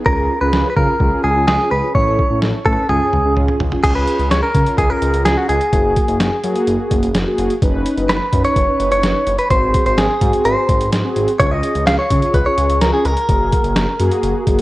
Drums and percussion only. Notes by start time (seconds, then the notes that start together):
0.06 kick
0.53 snare
0.77 kick
1.00 kick
1.48 snare
1.95 kick
2.19 kick
2.42 snare
2.66 kick
2.89 high tom
3.13 mid tom
3.37 mid tom
3.48 mid tom
3.60 floor tom
3.72 floor tom
3.84 kick, closed hi-hat, crash
4.07 closed hi-hat
4.19 closed hi-hat
4.31 snare, closed hi-hat
4.55 kick, closed hi-hat
4.66 closed hi-hat
4.78 kick, closed hi-hat
5.02 closed hi-hat
5.14 closed hi-hat
5.26 snare, closed hi-hat
5.49 closed hi-hat
5.61 closed hi-hat
5.73 kick, closed hi-hat
5.96 kick, closed hi-hat
6.08 closed hi-hat
6.20 snare, closed hi-hat
6.44 closed hi-hat
6.55 closed hi-hat
6.67 closed hi-hat
6.91 kick, closed hi-hat
7.03 closed hi-hat
7.15 snare, closed hi-hat
7.38 closed hi-hat
7.50 closed hi-hat
7.62 kick, closed hi-hat
7.86 closed hi-hat
7.97 closed hi-hat
8.09 snare, closed hi-hat
8.33 kick, closed hi-hat
8.44 closed hi-hat
8.56 kick, closed hi-hat
8.80 closed hi-hat
8.92 closed hi-hat
9.03 snare, closed hi-hat
9.27 closed hi-hat
9.39 closed hi-hat
9.51 kick, closed hi-hat
9.74 kick, closed hi-hat
9.86 closed hi-hat
9.98 snare, closed hi-hat
10.21 kick, closed hi-hat
10.33 closed hi-hat
10.45 closed hi-hat
10.69 kick, closed hi-hat
10.81 closed hi-hat
10.92 snare, closed hi-hat
11.16 closed hi-hat
11.28 closed hi-hat
11.40 kick, closed hi-hat
11.63 closed hi-hat
11.75 closed hi-hat
11.87 snare, closed hi-hat
12.10 kick, closed hi-hat
12.22 closed hi-hat
12.34 kick, closed hi-hat
12.58 closed hi-hat
12.70 closed hi-hat
12.81 snare, closed hi-hat
13.05 closed hi-hat
13.17 closed hi-hat
13.29 kick, closed hi-hat
13.52 kick, closed hi-hat
13.64 closed hi-hat
13.76 snare, closed hi-hat
14.00 closed hi-hat
14.11 closed hi-hat
14.23 closed hi-hat
14.47 kick, closed hi-hat
14.59 closed hi-hat